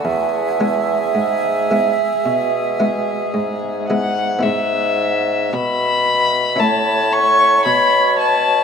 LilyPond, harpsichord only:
\new Staff \with { instrumentName = "Harpsichord" } { \time 4/4 \key e \mixolydian \tempo 4 = 55 << { r8 <gis b e'>4 <gis b e'>8 r8 <gis b e'>4 <gis b e'>8 | <b e'>2 <cis' e' cis''>2 | } \\ { e,4 gis,8. r16 b,4 gis,4 | gis,4 b,4 a,4 b,4 | } >> }